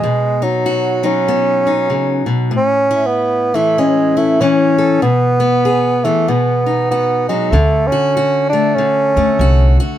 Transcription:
0.00 1.89 B2 medium
0.00 0.45 G#3 medium
0.00 0.42 B3 soft
0.42 1.07 F#3 medium
0.42 1.02 D#4 soft
0.66 2.51 F#4 medium
1.03 2.50 F#3 soft
1.03 2.30 C#4 medium
1.03 1.65 D#4 soft
1.28 2.51 B3 soft
1.67 2.51 D#4 soft
1.90 2.26 C#3 soft
2.26 2.52 B2 medium
2.51 4.99 A2 medium
2.56 3.08 C#4 medium
2.91 3.54 E4 soft
3.06 3.56 B3 medium
3.54 4.39 E3 medium
3.54 3.81 A3 medium
3.54 4.16 E4 medium
3.78 4.19 G#3 medium
3.78 4.40 C#4 soft
4.17 4.42 A3 medium
4.17 5.01 E4 soft
4.41 5.00 E3 medium
4.41 5.02 C#4 medium
4.41 5.01 C#4 medium
4.78 5.00 A4 medium
5.02 6.03 B2 medium
5.02 6.06 B3 medium
5.40 6.03 B3 soft
5.65 6.25 G#4 medium
6.04 6.29 E3 medium
6.04 6.30 A3 medium
6.04 6.66 B3 medium
6.28 7.53 B2 medium
6.28 6.90 B3 medium
6.66 7.29 D#4 soft
6.91 7.26 B3 medium
6.91 7.51 F#4 medium
7.28 7.51 F#3 medium
7.28 7.53 G#3 medium
7.28 7.51 D#4 soft
7.51 7.89 D2 medium
7.51 8.77 D3 medium
7.51 7.89 A3 medium
7.87 8.49 C#4 medium
7.92 8.16 F#4 medium
8.17 9.40 F#4 medium
8.49 9.16 A3 medium
8.49 8.76 D4 medium
8.74 9.77 C#4 medium
8.78 9.98 D3 medium
9.16 9.28 D2 medium
9.16 9.98 A3 soft
9.39 9.76 C2 medium
9.39 9.79 F#4 medium
9.80 9.98 F#4 medium

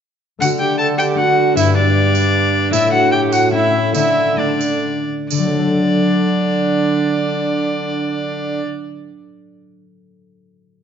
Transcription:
0.39 1.58 D3 medium
0.39 1.59 D3 soft
0.39 1.14 A3 soft
0.39 1.15 D4 soft
0.39 0.50 F#4 medium
0.39 0.48 F#5 medium
0.39 tambourine medium
0.60 0.79 G4 medium
0.60 0.78 G5 medium
0.78 0.98 A4 medium
0.78 0.86 A5 medium
0.98 1.19 G4 medium
0.98 1.06 G5 medium
0.98 tambourine soft
1.15 1.57 A3 soft
1.15 1.54 D4 soft
1.15 1.57 F#4 medium
1.15 1.56 F#5 medium
1.54 2.74 G2 soft
1.54 2.72 G2 medium
1.54 2.72 B3 soft
1.54 2.71 D4 soft
1.54 1.64 E5 medium
1.54 tambourine medium
1.58 1.76 E4 medium
1.76 2.74 D4 medium
1.76 2.70 D5 medium
2.15 tambourine soft
2.71 3.95 A2 medium
2.71 3.49 A3 soft
2.71 3.54 D4 soft
2.71 2.92 E4 medium
2.71 2.92 E5 medium
2.71 tambourine medium
2.93 3.14 F#4 medium
2.93 3.11 F#5 medium
3.12 3.34 G4 medium
3.12 3.20 G5 medium
3.32 3.53 F#4 medium
3.32 3.52 F#5 medium
3.32 tambourine soft
3.50 3.91 A3 soft
3.50 3.96 C#4 soft
3.50 3.94 E4 medium
3.50 3.94 E5 medium
3.92 5.07 D3 medium
3.92 5.30 D3 soft
3.92 4.35 A3 soft
3.92 4.37 D4 soft
3.92 4.40 E4 medium
3.92 4.39 E5 medium
3.92 tambourine medium
4.37 5.44 A3 soft
4.37 5.51 D4 soft
4.37 5.07 D4 medium
4.37 5.07 D5 medium
4.61 tambourine soft
5.30 8.62 D3 medium
5.30 9.22 D3 soft
5.30 8.64 D4 medium
5.30 8.63 D5 medium
5.30 tambourine medium
5.38 9.08 F#3 soft
5.45 8.78 A3 soft
5.52 8.85 D4 soft
5.59 8.92 A4 soft

